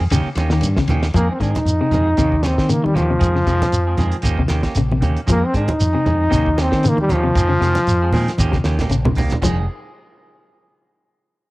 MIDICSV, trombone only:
0, 0, Header, 1, 2, 480
1, 0, Start_track
1, 0, Key_signature, -4, "minor"
1, 0, Tempo, 517688
1, 1071, Time_signature, 4, 2, 24, 8
1, 10667, End_track
2, 0, Start_track
2, 0, Title_t, "Trombone"
2, 0, Program_c, 0, 57
2, 1078, Note_on_c, 0, 58, 98
2, 1198, Note_off_c, 0, 58, 0
2, 1216, Note_on_c, 0, 60, 73
2, 1309, Note_off_c, 0, 60, 0
2, 1317, Note_on_c, 0, 63, 95
2, 2278, Note_on_c, 0, 60, 84
2, 2292, Note_off_c, 0, 63, 0
2, 2506, Note_on_c, 0, 58, 81
2, 2520, Note_off_c, 0, 60, 0
2, 2636, Note_on_c, 0, 55, 90
2, 2650, Note_off_c, 0, 58, 0
2, 2743, Note_on_c, 0, 53, 107
2, 2757, Note_off_c, 0, 55, 0
2, 4151, Note_off_c, 0, 53, 0
2, 4921, Note_on_c, 0, 58, 99
2, 5059, Note_on_c, 0, 60, 99
2, 5073, Note_off_c, 0, 58, 0
2, 5152, Note_off_c, 0, 60, 0
2, 5165, Note_on_c, 0, 63, 103
2, 6135, Note_on_c, 0, 60, 93
2, 6149, Note_off_c, 0, 63, 0
2, 6384, Note_on_c, 0, 58, 100
2, 6398, Note_off_c, 0, 60, 0
2, 6493, Note_off_c, 0, 58, 0
2, 6503, Note_on_c, 0, 55, 98
2, 6614, Note_on_c, 0, 53, 115
2, 6628, Note_off_c, 0, 55, 0
2, 8006, Note_off_c, 0, 53, 0
2, 10667, End_track
0, 0, End_of_file